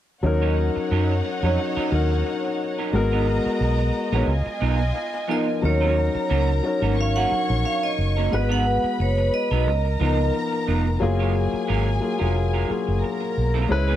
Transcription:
0.23 fingered electric bass D#2, grand piano F#3 C#4 D#4 A#4, string section D#4 C#5 F#5, muted clean electric guitar stroke
0.42 clean electric guitar F#3 C#4 D#4 C#5
0.58 muted clean electric guitar stroke
0.76 muted clean electric guitar stroke, muted fingered electric bass stroke
0.91 fingered electric bass F#2, clean electric guitar F#3 C#4 D#4 A#4
1.25 muted clean electric guitar stroke
1.43 fingered electric bass F2, grand piano F#3 C#4 D#4 C#5, clean electric guitar F#3 C#4 D#4 A#4
1.59 muted clean electric guitar stroke
1.77 clean electric guitar F#3 C#4 D#4 A#4, muted fingered electric bass stroke
1.91 fingered electric bass D#2, grand piano F#3 C#4 D#4 A#4, muted clean electric guitar stroke
2.11 muted clean electric guitar stroke
2.26 muted clean electric guitar stroke
2.45 muted clean electric guitar stroke
2.79 clean electric guitar F#3 C#4 D#4 A#4
2.93 fingered electric bass G#1, grand piano G#3 B3 F#4 A#4, string section F#4 D#5 A#5, muted clean electric guitar stroke
3.12 clean electric guitar F#3 B3 D#4 A#4
3.27 muted clean electric guitar stroke
3.45 muted clean electric guitar stroke, muted fingered electric bass stroke
3.61 fingered electric bass B1, muted clean electric guitar stroke
3.79 muted clean electric guitar stroke
4.12 fingered electric bass A#1, clean electric guitar F#3 B3 D#4 A#4, grand piano G#3 B3 F#4 C#5
4.28 fingered electric bass C#2, string section F4 D#5 G#5
4.46 muted clean electric guitar stroke
4.61 fingered electric bass B1, clean electric guitar B3 D#4 F4 A#4
4.79 muted clean electric guitar stroke
4.95 muted clean electric guitar stroke
5.14 muted clean electric guitar stroke
5.28 grand piano F3 B3 D#4 A#4, clean electric guitar B3 D#4 F4 A#4, vibraphone D#5
5.47 muted clean electric guitar stroke
5.62 fingered electric bass D#2, grand piano F#3 C#4 D#4 A#4, string section A#4 A#5, vibraphone C#5, muted clean electric guitar stroke
5.81 clean electric guitar A#3 C#4 F#4 C#5
5.96 muted clean electric guitar stroke
6.15 muted clean electric guitar stroke, muted fingered electric bass stroke
6.30 fingered electric bass C#2, clean electric guitar A#3 C#4 F#4 A#4
6.63 grand piano F#3 C#4 D#4 A#4, muted clean electric guitar stroke
6.81 fingered electric bass G#1, grand piano F#3 C#4 D#4 A#4, clean electric guitar A#3 C#4 F#4 A#4
6.98 string section C#5 C#6, vibraphone F5, muted clean electric guitar stroke
7.16 clean electric guitar A#3 C#4 F#4 A#4, vibraphone F#5
7.31 grand piano F#3 C#4 D#4 A#4, muted fingered electric bass stroke, muted clean electric guitar stroke
7.49 fingered electric bass A#1, muted clean electric guitar stroke
7.65 vibraphone F5, muted clean electric guitar stroke
7.83 vibraphone D#5, muted clean electric guitar stroke
7.98 fingered electric bass F#1
8.17 clean electric guitar A#3 C#4 F#4 A#4
8.31 fingered electric bass G#1, grand piano G#3 B3 F#4 B4, string section B4 B5, vibraphone D#5, muted clean electric guitar stroke
8.49 clean electric guitar F#3 B3 D#4 A#4, vibraphone F#5
8.65 muted clean electric guitar stroke
8.84 muted fingered electric bass stroke, muted clean electric guitar stroke
8.99 fingered electric bass F#1, vibraphone C#5, muted clean electric guitar stroke
9.18 muted clean electric guitar stroke
9.34 vibraphone D#5
9.51 fingered electric bass B1, clean electric guitar F#3 B3 D#4 A#4
9.67 fingered electric bass C#2, string section A#4 A#5
9.85 muted clean electric guitar stroke
9.99 fingered electric bass C#2, grand piano F3 B3 D#4 A#4, clean electric guitar B3 D#4 F4 A#4
10.18 muted clean electric guitar stroke
10.34 muted clean electric guitar stroke
10.53 muted clean electric guitar stroke
10.68 fingered electric bass F1, clean electric guitar B3 D#4 F4 A#4
10.86 muted clean electric guitar stroke
11.00 fingered electric bass F#1, grand piano F#3 A#3 F4 G#4, string section G#4 G#5, muted clean electric guitar stroke
11.19 clean electric guitar G#3 C#4 F4 C#5
11.34 muted clean electric guitar stroke
11.53 muted clean electric guitar stroke, muted fingered electric bass stroke
11.67 fingered electric bass G#1, clean electric guitar G#3 C#4 F4 A#4
12.01 grand piano F#3 A#3 F4 G#4, muted clean electric guitar stroke
12.19 fingered electric bass F1, grand piano F#3 A#3 F4 G#4, clean electric guitar G#3 C#4 F4 A#4
12.35 muted clean electric guitar stroke
12.54 clean electric guitar G#3 C#4 F4 A#4
12.68 grand piano F#3 A#3 F4 G#4, muted clean electric guitar stroke, muted fingered electric bass stroke
12.88 fingered electric bass F#1, muted clean electric guitar stroke
13.01 string section A#4 A#5, muted clean electric guitar stroke
13.21 muted clean electric guitar stroke
13.38 fingered electric bass B1
13.54 clean electric guitar G#3 C#4 F4 A#4
13.69 fingered electric bass C#2, grand piano G#3 C#4 E4 B4, string section B4 B5, muted clean electric guitar stroke
13.88 clean electric guitar B3 E4 G#4 B4

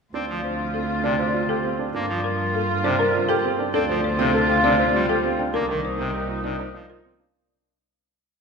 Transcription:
0.14 cello D2, pipe organ C4, string section C4 F4, grand piano D4, oboe F4
0.29 pipe organ F3
0.44 marimba C5
0.74 marimba A4
1.04 pipe organ C3, grand piano D4, marimba D5
1.19 grand piano C5, marimba C5
1.34 grand piano F4
1.49 grand piano G4, marimba A4
1.64 grand piano C4
1.79 grand piano D4
1.94 cello G2, string section A#3 F4, pipe organ A#3, grand piano D4, oboe F4
2.09 pipe organ F3
2.24 marimba A#4
2.55 marimba A4
2.84 pipe organ C3, grand piano D4, marimba C5
2.99 grand piano A#4, marimba A#4
3.14 grand piano F4
3.29 grand piano G4, marimba A4
3.44 grand piano C4
3.59 grand piano D4
3.74 cello D2, pipe organ C4, string section C4 F4, grand piano D4, oboe F4, marimba A4
3.89 pipe organ F3, grand piano C5
4.04 marimba C5
4.19 pipe organ C3, grand piano C4
4.34 grand piano A4, marimba A4
4.49 grand piano G4
4.64 pipe organ C3, grand piano D4, marimba D5
4.79 grand piano C5, marimba C5
4.94 pipe organ G3, grand piano F4
5.09 grand piano G4, marimba A4
5.24 grand piano C4
5.39 grand piano D4, marimba G5
5.54 cello C2, string section A#3 D#4, pipe organ A#3, grand piano D4, oboe D#4, marimba A#4
5.69 pipe organ D#3, grand piano A#4
5.85 marimba C5
5.99 pipe organ C3, grand piano C4
6.14 grand piano G4, marimba A#4
6.29 grand piano F4
6.44 pipe organ C3, grand piano D4, marimba D5
6.59 grand piano A#4, marimba C5
6.74 pipe organ F3, grand piano D#4
6.90 grand piano F4, marimba A#4
7.05 grand piano C4
7.19 grand piano D4, marimba F5

